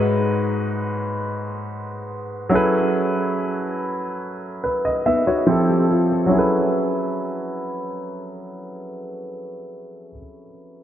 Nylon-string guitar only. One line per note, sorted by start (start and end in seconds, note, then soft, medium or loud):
5.06 5.26 B3 medium
5.06 5.26 D#4 medium
5.27 5.67 D#4 medium
5.27 5.67 F#4 medium
5.69 5.90 E4 medium
5.69 5.89 G4 medium
5.90 6.11 F4 medium
5.90 6.10 A4 medium
6.12 6.52 A4 medium
6.12 6.52 C5 medium